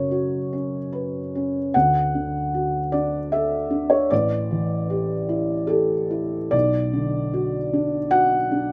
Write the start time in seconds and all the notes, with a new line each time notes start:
Already playing: F#2 C#3 C#5
0.11 F#4
0.53 C#4
0.92 B4
1.35 C#4
1.74 D2 F#5
2.15 D3
2.54 F#4
2.92 D4 D5
3.32 A4 E5
3.70 D4
3.90 C#5
4.10 A1 D5
4.51 E3
4.90 G4
5.29 E4
5.67 G4 A4
6.11 E4
6.51 B1 D5
6.93 D3
7.33 F#4
7.73 D4
8.11 F#4 F#5
8.52 D4